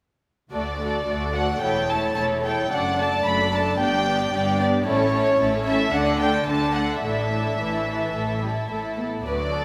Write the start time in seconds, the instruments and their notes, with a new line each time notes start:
0.52 cello section D2, double bass section D2, viola section A3 F#4, violin section A4 D5
0.81 viola section A3 F#4, violin section A4 D5
1.07 cello section D2, double bass section D2, viola section A3 F#4, violin section A4 D5
1.35 viola section A3 F#4, violin section A4 D5 F#5
1.62 double bass section E1, cello section E2, viola section A3 E4, violin section A4 C#5 G5
1.89 viola section A3 E4, violin section A4 C#5 A5
2.16 double bass section E1, cello section E2, viola section A3 E4, violin section A4 C#5 A5
2.43 viola section A3 E4, violin section A4 C#5 G5
2.70 double bass section F#1, cello section F#2, viola section A3 D4, violin section A4 D5 F#5
2.98 viola section A3 D4, violin section A4 D5 A5
3.25 double bass section F#1, cello section F#2, viola section A3 D4, violin section A4 D5 B5
3.52 viola section A3 D4, violin section A4 D5 A5
3.79 double bass section G1, cello section G2, viola section B3 D4, violin section G4 D5 G5
4.06 viola section B3 D4, violin section G4 D5
4.32 double bass section G1, cello section G2, viola section B3 D4, violin section G4 D5
4.60 viola section B3 D4, violin section G4 D5
4.86 double bass section A1, cello section A2, viola section A3 C#4, violin section E4 A4 C#5
5.14 viola section A3 C#4, violin section E4 A4
5.40 double bass section A1, cello section A2, viola section A3 C#4, violin section E4 A4
5.66 viola section A3 C#4, violin section E4 A4 E5
5.93 double bass section D2, cello section D3, viola section A3 D4, violin section D4 A4 F#5
6.20 viola section A3 D4, violin section D4 A4 G5
6.48 double bass section D2, cello section D3, viola section A3 D4, violin section D4 A4 A5
6.75 viola section A3 D4, violin section D4 A4 F#5
7.01 double bass section A1, cello section A2, viola section A3 D4, violin section E4 E5
7.06 violin section A4
7.31 viola section A3 D4, violin section E4 A4
7.58 double bass section A1, cello section A2, viola section E3, violin section E4 A4
7.88 violin section E4 A4
8.14 double bass section A1, cello section A2, violin section E4 A4
8.43 viola section G3, violin section E4 A4
8.70 double bass section A1, cello section A2, viola section A3, violin section E4 A4
8.98 viola section B3, violin section E4 A4
9.24 cello section D2, double bass section D2, viola section F#3 F#4, violin section B4 D5
9.53 violin section A4